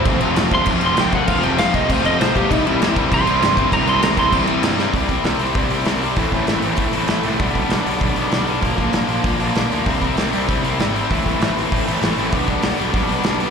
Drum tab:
CC |xxxxxxxx|xxxxxxxx|xxxxxxxx|xxxxxxx-|
HH |--------|--------|--------|--------|
SD |--o---o-|--o---o-|--o---o-|--o---oo|
BD |o--oo--o|o--oo--o|o--oo--o|o--oo---|

CC |--------|--------|--------|--------|
HH |oooooooo|oooooooo|oooooooo|oooooooo|
SD |--o---o-|--o---o-|--o---o-|--o---o-|
BD |oo--o---|oo--o---|oo--o---|oo--o---|

CC |--------|--------|--------|
HH |oooooooo|oooooooo|oooooooo|
SD |--o---o-|--o---o-|--o---o-|
BD |oo--o---|oo--o---|oo--o---|